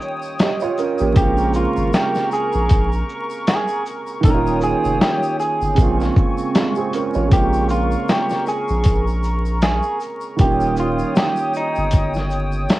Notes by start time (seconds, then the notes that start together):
Already playing: D#3 G3 A#3 C#4 F4 C#5 G5 D#6
0.01 shaker
0.22 shaker
0.39 G4 D#5, snare, closed hi-hat, shaker
0.60 F4 C#5, shaker
0.78 C#4 A#4, shaker
0.98 A1 A#3 G4, shaker
1.13 A#1 C#3 G#3 A#3 G4 A#4 A#5 C#6, kick, closed hi-hat, shaker
1.19 C4 F4
1.37 shaker
1.53 F4, shaker
1.76 G#1, shaker
1.93 G4, snare, closed hi-hat, shaker
2.15 snare, shaker
2.31 G#4, shaker
2.33 shaker
2.52 A#1, shaker
2.69 A#1, kick, closed hi-hat, shaker
2.92 shaker
3.09 shaker
3.30 shaker
3.47 G#4, snare, closed hi-hat, shaker
3.68 shaker
3.86 shaker
4.07 shaker
4.21 D#1 D#3 A#3 C#5 G5 D#6, kick, closed hi-hat, shaker
4.25 C#4 D#4 A#4
4.34 F4
4.47 shaker
4.61 shaker
4.63 G#4, shaker
4.85 F1, shaker
5.01 G4, snare, closed hi-hat, shaker
5.23 shaker
5.40 G#4, shaker
5.62 G1, shaker
5.75 A#1 C#3 G#3 A#3 C4 G#5 C#6, kick, closed hi-hat, shaker
5.80 C4 F4
6.01 snare, shaker
6.16 kick, shaker
6.38 shaker
6.55 G#3 F4, snare, closed hi-hat, shaker
6.75 C4 G#4, shaker
6.93 C#4 A#4, closed hi-hat, shaker
7.14 A1 F4 C#5, shaker
7.28 A#1 C#3 G#3 A#3 A#4 A#5 C#6, kick, closed hi-hat, shaker
7.33 C4 F4 G4
7.53 shaker
7.69 shaker
7.70 F4, shaker
7.91 shaker
8.09 G4, snare, closed hi-hat, shaker
8.30 snare, shaker
8.47 shaker
8.48 G#4, shaker
8.68 A#1, shaker
8.84 kick, closed hi-hat, shaker
9.07 shaker
9.23 shaker
9.46 shaker
9.62 G#4, snare, closed hi-hat, shaker
9.83 shaker
10.00 shaker
10.21 shaker
10.36 D#1 D#3 G3 C#5 G5 D#6, kick, closed hi-hat, shaker
10.40 A#3 C#4 F4 G4
10.60 shaker
10.76 F4, shaker
10.99 shaker
11.16 G4, snare, closed hi-hat, shaker
11.36 shaker
11.54 shaker
11.56 D#4, shaker
11.75 G1, shaker
11.91 kick, closed hi-hat, shaker
12.14 snare, shaker
12.30 shaker
12.52 shaker
12.69 snare, closed hi-hat, shaker